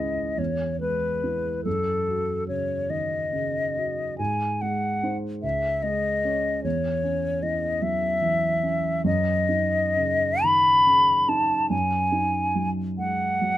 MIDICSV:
0, 0, Header, 1, 3, 480
1, 0, Start_track
1, 0, Key_signature, 4, "minor"
1, 0, Tempo, 846262
1, 941, Time_signature, 6, 3, 24, 8
1, 2855, Tempo, 805369
1, 5255, Tempo, 913242
1, 6215, Tempo, 848656
1, 7736, End_track
2, 0, Start_track
2, 0, Title_t, "Flute"
2, 0, Program_c, 0, 73
2, 0, Note_on_c, 0, 75, 46
2, 219, Note_on_c, 0, 73, 54
2, 227, Note_off_c, 0, 75, 0
2, 454, Note_off_c, 0, 73, 0
2, 457, Note_on_c, 0, 71, 51
2, 929, Note_off_c, 0, 71, 0
2, 933, Note_on_c, 0, 69, 51
2, 1398, Note_off_c, 0, 69, 0
2, 1408, Note_on_c, 0, 73, 50
2, 1645, Note_on_c, 0, 75, 55
2, 1653, Note_off_c, 0, 73, 0
2, 2369, Note_off_c, 0, 75, 0
2, 2372, Note_on_c, 0, 80, 54
2, 2617, Note_on_c, 0, 78, 51
2, 2626, Note_off_c, 0, 80, 0
2, 2938, Note_off_c, 0, 78, 0
2, 3090, Note_on_c, 0, 76, 57
2, 3328, Note_on_c, 0, 75, 63
2, 3337, Note_off_c, 0, 76, 0
2, 3807, Note_off_c, 0, 75, 0
2, 3811, Note_on_c, 0, 73, 60
2, 4281, Note_on_c, 0, 75, 58
2, 4290, Note_off_c, 0, 73, 0
2, 4517, Note_on_c, 0, 76, 73
2, 4526, Note_off_c, 0, 75, 0
2, 5250, Note_off_c, 0, 76, 0
2, 5253, Note_on_c, 0, 75, 69
2, 5983, Note_on_c, 0, 83, 74
2, 5991, Note_off_c, 0, 75, 0
2, 6442, Note_on_c, 0, 81, 57
2, 6451, Note_off_c, 0, 83, 0
2, 6673, Note_off_c, 0, 81, 0
2, 6676, Note_on_c, 0, 80, 63
2, 7238, Note_off_c, 0, 80, 0
2, 7403, Note_on_c, 0, 78, 67
2, 7736, Note_off_c, 0, 78, 0
2, 7736, End_track
3, 0, Start_track
3, 0, Title_t, "Grand piano"
3, 0, Program_c, 1, 0
3, 0, Control_c, 1, 64, 127
3, 0, Note_on_c, 1, 37, 34
3, 0, Note_on_c, 1, 56, 27
3, 0, Note_on_c, 1, 61, 26
3, 0, Note_on_c, 1, 64, 29
3, 121, Note_off_c, 1, 56, 0
3, 193, Note_off_c, 1, 61, 0
3, 195, Note_off_c, 1, 64, 0
3, 196, Note_off_c, 1, 37, 0
3, 213, Note_on_c, 1, 40, 35
3, 231, Control_c, 1, 64, 0
3, 307, Control_c, 1, 64, 127
3, 457, Note_on_c, 1, 56, 28
3, 699, Note_on_c, 1, 59, 26
3, 702, Note_on_c, 1, 64, 28
3, 843, Note_off_c, 1, 56, 0
3, 916, Note_off_c, 1, 40, 0
3, 916, Note_off_c, 1, 59, 0
3, 918, Note_off_c, 1, 64, 0
3, 938, Note_on_c, 1, 42, 36
3, 951, Control_c, 1, 64, 0
3, 1028, Control_c, 1, 64, 127
3, 1177, Note_on_c, 1, 66, 31
3, 1412, Note_on_c, 1, 49, 27
3, 1552, Note_off_c, 1, 66, 0
3, 1645, Note_on_c, 1, 51, 25
3, 1790, Note_off_c, 1, 49, 0
3, 1886, Note_off_c, 1, 51, 0
3, 1886, Note_on_c, 1, 49, 29
3, 2131, Note_on_c, 1, 66, 30
3, 2279, Note_off_c, 1, 49, 0
3, 2354, Note_off_c, 1, 42, 0
3, 2378, Note_off_c, 1, 66, 0
3, 2378, Note_on_c, 1, 44, 40
3, 2387, Control_c, 1, 64, 0
3, 2482, Control_c, 1, 64, 127
3, 2622, Note_on_c, 1, 56, 33
3, 2855, Note_on_c, 1, 63, 27
3, 2857, Note_on_c, 1, 72, 33
3, 2999, Note_off_c, 1, 56, 0
3, 3071, Note_off_c, 1, 63, 0
3, 3072, Note_off_c, 1, 44, 0
3, 3072, Note_off_c, 1, 72, 0
3, 3091, Note_on_c, 1, 37, 39
3, 3104, Control_c, 1, 64, 0
3, 3191, Control_c, 1, 64, 127
3, 3331, Note_on_c, 1, 56, 34
3, 3576, Note_on_c, 1, 61, 31
3, 3580, Note_on_c, 1, 73, 33
3, 3722, Note_off_c, 1, 56, 0
3, 3794, Note_off_c, 1, 61, 0
3, 3796, Note_off_c, 1, 37, 0
3, 3796, Note_off_c, 1, 73, 0
3, 3814, Note_on_c, 1, 40, 46
3, 3828, Control_c, 1, 64, 0
3, 3919, Control_c, 1, 64, 127
3, 4048, Note_on_c, 1, 61, 33
3, 4280, Note_on_c, 1, 52, 31
3, 4423, Note_off_c, 1, 61, 0
3, 4514, Note_on_c, 1, 54, 31
3, 4661, Note_off_c, 1, 52, 0
3, 4752, Note_on_c, 1, 52, 33
3, 4756, Note_off_c, 1, 54, 0
3, 4998, Note_on_c, 1, 61, 33
3, 5148, Note_off_c, 1, 52, 0
3, 5227, Note_off_c, 1, 40, 0
3, 5245, Note_on_c, 1, 42, 48
3, 5250, Note_off_c, 1, 61, 0
3, 5262, Control_c, 1, 64, 0
3, 5336, Control_c, 1, 64, 127
3, 5480, Note_on_c, 1, 63, 34
3, 5729, Note_on_c, 1, 49, 30
3, 5886, Note_off_c, 1, 63, 0
3, 5980, Note_on_c, 1, 51, 27
3, 6120, Note_off_c, 1, 49, 0
3, 6205, Note_on_c, 1, 49, 33
3, 6210, Note_off_c, 1, 51, 0
3, 6440, Note_on_c, 1, 63, 33
3, 6586, Note_off_c, 1, 49, 0
3, 6660, Note_off_c, 1, 42, 0
3, 6675, Note_on_c, 1, 42, 44
3, 6682, Note_off_c, 1, 63, 0
3, 6697, Control_c, 1, 64, 0
3, 6779, Control_c, 1, 64, 127
3, 6913, Note_on_c, 1, 63, 33
3, 7158, Note_on_c, 1, 54, 30
3, 7307, Note_off_c, 1, 63, 0
3, 7402, Note_on_c, 1, 56, 28
3, 7551, Note_off_c, 1, 54, 0
3, 7644, Note_on_c, 1, 54, 30
3, 7647, Note_off_c, 1, 56, 0
3, 7736, Note_off_c, 1, 42, 0
3, 7736, Note_off_c, 1, 54, 0
3, 7736, End_track
0, 0, End_of_file